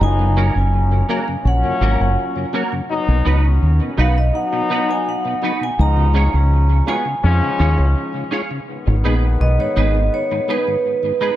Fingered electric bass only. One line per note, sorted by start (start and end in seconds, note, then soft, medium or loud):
0.01 0.49 F#1 loud
0.56 1.02 F#1 medium
1.45 1.62 A#1 medium
1.81 1.98 G#1 medium
2.00 2.15 F#1 medium
3.08 3.24 B1 loud
3.26 3.58 C#2 medium
3.62 3.79 D#2 medium
3.98 4.30 B1 medium
5.79 6.27 C#2 loud
6.34 6.80 C#2 medium
7.24 7.40 F2 medium
7.60 7.76 D#2 medium
7.79 7.94 C#2 medium
8.87 9.02 G#1 medium
9.04 9.36 A#1 medium
9.40 9.57 B1 medium
9.77 10.08 G#1 medium